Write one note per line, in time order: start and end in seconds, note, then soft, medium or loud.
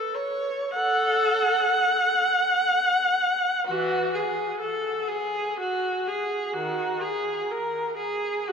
0.00 0.15 A4 medium
0.15 0.73 C#5 medium
0.74 2.18 A4 medium
0.74 3.61 F#5 medium
3.67 4.12 E3 medium
3.67 4.13 F#4 medium
4.15 4.62 G#4 medium
4.60 5.07 A4 medium
5.08 5.58 G#4 medium
5.60 6.07 F#4 medium
6.08 6.55 G#4 medium
6.54 6.98 D#3 medium
6.54 7.01 F#4 medium
7.00 7.48 G#4 medium
7.51 7.98 A#4 medium
7.98 8.47 G#4 medium
8.48 8.52 F#4 medium